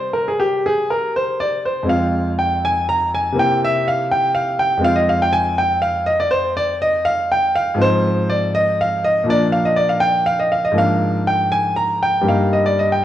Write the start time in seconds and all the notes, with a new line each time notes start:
Already playing: C3 G3 C4 G4 C5
0.13 A#4
0.28 G#4
0.40 G4
0.66 G#4
0.90 A#4
1.16 C5
1.40 D5
1.65 C5
1.83 F2 G#3 C4
1.87 F4 F5
2.39 G5
2.65 G#5
2.89 A#5
3.14 G#5
3.32 C3 A#3 C4
3.37 E4 G5
3.64 E5
3.88 F5
4.11 G5
4.34 F5
4.59 G5
4.77 F2 G#3 C4
4.82 F4 F5
4.95 D#5
5.09 F5
5.22 G5
5.32 G#5
5.58 G5
5.82 F5
6.06 D#5
6.20 D5
6.31 C5
6.57 D5
6.82 D#5
7.05 F5
7.31 G5
7.55 F5
7.74 G#2 F3 C4
7.80 D#4 C5
8.30 D5
8.55 D#5
8.81 F5
9.05 D#5
9.24 A#2 F3 A#3
9.29 D4 D5
9.52 F5
9.65 D#5
9.76 D5
9.89 F5
10.00 G5
10.26 F5
10.40 D#5
10.52 F5
10.65 D#5
10.72 G#2 F3 A#3
10.77 D4 F5
11.27 G5
11.51 G#5
11.76 A#5
12.02 G5
12.21 G2 G3 A#3
12.27 D#4 F5
12.53 D#5
12.65 D5
12.79 D#5
12.92 G5